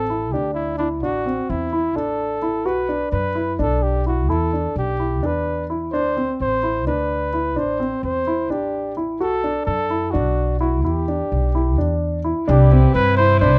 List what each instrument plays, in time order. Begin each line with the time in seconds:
Already playing: upright bass A1, flugelhorn A4
0.10 grand piano E4
0.32 upright bass D2, grand piano D4, flugelhorn G4
0.54 flugelhorn E4
0.78 flugelhorn D4, grand piano E4
1.03 upright bass A1, grand piano D4, flugelhorn F#4
1.26 grand piano C4
1.50 upright bass E2, flugelhorn E4
1.73 grand piano E4
1.96 upright bass A1, grand piano D4, flugelhorn A4
2.42 grand piano E4
2.66 upright bass B1, grand piano F#4, flugelhorn B4
2.89 grand piano D4
3.12 upright bass F#2, flugelhorn B4
3.35 grand piano E4
3.59 upright bass B1, grand piano D4, flugelhorn A4
3.83 flugelhorn G4
4.06 grand piano E4, flugelhorn F#4
4.29 upright bass E2, grand piano E4, flugelhorn A4
4.53 grand piano D4
4.76 upright bass B1, flugelhorn G4
5.00 grand piano E4
5.23 upright bass E2, grand piano D4, flugelhorn B4
5.70 grand piano E4
5.92 upright bass D2, grand piano D4, flugelhorn C5
6.17 grand piano C4
6.40 upright bass A1, flugelhorn C5
6.63 grand piano E4
6.86 upright bass D2, grand piano D4, flugelhorn B4
7.33 grand piano E4
7.56 upright bass A1, grand piano D4, flugelhorn C5
7.80 grand piano C4
8.03 upright bass E2, flugelhorn C5
8.27 grand piano E4
8.50 upright bass A1, grand piano D4, flugelhorn G4
8.97 grand piano E4
9.19 upright bass B1, grand piano F#4, flugelhorn A4
9.44 grand piano D4
9.65 upright bass F#2, flugelhorn A4
9.90 grand piano E4
10.11 upright bass B1, grand piano D4, flugelhorn F#4
10.60 grand piano E4, flugelhorn F#4
10.83 upright bass E2, grand piano E4, flugelhorn G4
11.08 grand piano D4
11.32 upright bass B1
11.55 grand piano E4
11.78 upright bass E2, grand piano D4
12.24 grand piano E4
12.48 upright bass C2, string section C3 E4 B4, grand piano D4, flugelhorn G4
12.72 grand piano C4
12.94 upright bass G2, flugelhorn B4
13.17 grand piano E4, flugelhorn C5
13.40 upright bass C2, grand piano D4, flugelhorn C5